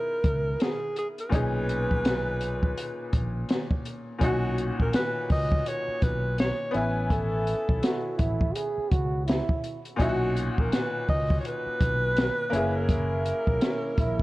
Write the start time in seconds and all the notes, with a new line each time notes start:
Already playing: B3 D#4 E4 G#4 A#4
0.24 C#2, kick, closed hi-hat
0.60 G#4, snare, closed hi-hat
0.96 G#4, closed hi-hat
1.18 B4, closed hi-hat
1.29 B1 A#2 C#4 D#4, kick, closed hi-hat
1.35 G#4
1.69 closed hi-hat
1.91 kick
2.05 snare, closed hi-hat
2.40 closed hi-hat
2.63 kick
2.77 closed hi-hat
3.13 A#1, kick, closed hi-hat
3.49 snare, closed hi-hat
3.71 kick
3.85 closed hi-hat
4.19 B1 A#2 C#4 D#4, kick, closed hi-hat
4.24 F#4
4.58 closed hi-hat
4.80 A#1 A#4, kick
4.93 B4, snare, closed hi-hat
5.30 C#2 D#5, kick, open hi-hat
5.52 kick
5.66 C#5, closed hi-hat
5.88 muted fretless electric bass stroke
6.02 B1 B4, kick, closed hi-hat
6.38 C#5, snare, closed hi-hat
6.71 A1 B3 C#4 E4, closed hi-hat
6.77 B4 G#5
7.10 A4, kick, closed hi-hat
7.47 closed hi-hat
7.69 B1, kick
7.82 F#4, snare, closed hi-hat
8.18 A1 E4, kick, closed hi-hat
8.41 kick
8.54 G#4, closed hi-hat
8.77 muted fretless electric bass stroke
8.91 C#2 F#4, kick, closed hi-hat
9.26 E4, snare, closed hi-hat
9.49 kick
9.64 closed hi-hat
9.85 closed hi-hat
9.96 B1 A#2 C#4, kick, closed hi-hat
10.00 D#4 E4 F#4
10.09 F#4
10.36 closed hi-hat
10.58 A#1 A#4, kick
10.72 B4, snare, closed hi-hat
11.08 C#2 D#5, kick, open hi-hat
11.30 kick
11.40 C#5
11.45 B4, closed hi-hat
11.66 muted fretless electric bass stroke
11.81 B1, kick, closed hi-hat
12.17 snare, closed hi-hat
12.50 F#1 A#3 C#4, closed hi-hat
12.54 E4 G#4
12.76 A#4
12.89 kick, closed hi-hat
13.26 closed hi-hat
13.47 B1, kick
13.61 C#4, snare, closed hi-hat
13.98 A#1 E4, kick, closed hi-hat
14.20 kick